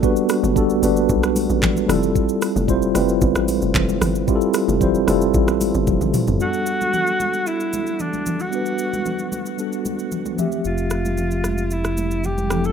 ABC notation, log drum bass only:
X:1
M:4/4
L:1/16
Q:1/4=113
K:G
V:1 name="Log drum bass" clef=bass
z3 G,,,3 G,,,2 B,,,3 A,,,3 =F,,,2 | z3 =F,,,3 F,,,2 G,,, A,,,2 F,,, F,,,2 G,,,2 | z3 =F,,,3 F,,,2 A,,,3 G,,, F,,, A,,, z G,,, | z16 |
z16 | z16 |]